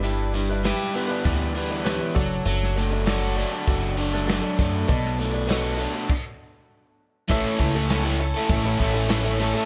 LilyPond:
<<
  \new Staff \with { instrumentName = "Tonewheel organ" } { \time 4/4 \key a \mixolydian \tempo 4 = 99 r1 | r1 | r1 | <a' cis'' e'' cis'''>1 | }
  \new Staff \with { instrumentName = "Grand piano" } { \time 4/4 \key a \mixolydian <g' b' e''>4 <g' b' e''>4 <g' b' d''>4 <g' b' cis''>8 <fis' a' d''>8~ | <fis' a' d''>4 <fis' a' d''>4 <fis' a' d''>4 <fis' a' d''>4 | <a' b' d''>4 <a' b' cis''>4 r2 | <e' a' cis'' e''>4 <e' a' cis'' e''>4 <e' a' cis'' e''>4 <e' a' cis'' e''>4 | }
  \new Staff \with { instrumentName = "Steel-string acoustic guitar" } { \time 4/4 \key a \mixolydian <g d' e' b'>8 <g d' e' b'>16 <d' e' b'>16 <g d' e' b'>8 <g d' e' b'>16 <d' e' b'>8. <g d' e' b'>16 <d' e' b'>16 <g d' e' b'>16 <d' e' b'>16 <fis a d' a'>8 | <fis a d' a'>8 <fis a d' a'>16 <a d' a'>16 <fis a d' a'>8 <fis a d' a'>16 <a d' a'>8. <fis a d' a'>16 <a d' a'>16 <fis a d' a'>16 <a d' a'>16 <fis a d' a'>8 | <b, fis a d' a'>8 <fis a d' a'>16 <a d' a'>16 <b, fis a d' a'>8 <fis a d' a'>16 <a d' a'>16 r2 | <a, e a cis' e' a'>8. <a cis' e' a'>16 <a, e a cis' e' a'>16 <a cis' e' a'>16 <a cis' e' a'>8. <a cis' e' a'>8 <a cis' e' a'>16 <a, e a cis' e' a'>16 <a cis' e' a'>16 <a cis' e' a'>16 <a cis' e' a'>16 | }
  \new Staff \with { instrumentName = "Overdriven electric guitar" } { \time 4/4 \key a \mixolydian g,8 g8 g'8 b8 e8 b8 e8 fis8 | fis8 a8 fis'8 d'8 fis8 d'8 fis8 a8 | b,8 a8 fis'8 d'8 r2 | <a, a cis' e' a'>8 <a cis' e' a'>8. <cis' e' a'>8 <cis' e' a'>16 <a, a cis' e' a'>16 <cis' e' a'>16 <a cis' e' a'>8 <a, a cis' e' a'>16 <cis' e' a'>16 <a cis' e' a'>16 <cis' e' a'>16 | }
  \new Staff \with { instrumentName = "Upright bass" } { \clef bass \time 4/4 \key a \mixolydian g,,4. r8 d,4. fis,,8 | fis,,2 fis,,4. fis,8 | b,,2 r2 | a,,16 r16 cis,4. a,,8 a,,4. | }
  \new DrumStaff \with { instrumentName = "Drums" } \drummode { \time 4/4 hh4 <hh sn>4 <hh bd>4 <hh sn>8 bd8 | hh16 sn8. <hh sn>4 <hh bd>8. sn16 <hh sn>8 bd8 | <hh bd>16 sn8. <hh sn>4 <cymc bd>4 r4 | <cymc bd>8 <hh bd>16 hh16 <hh sn>16 hh16 hh8 <hh bd>16 hh16 <hh bd>16 hh16 <hh sn>16 hh16 <hh sn>8 | }
>>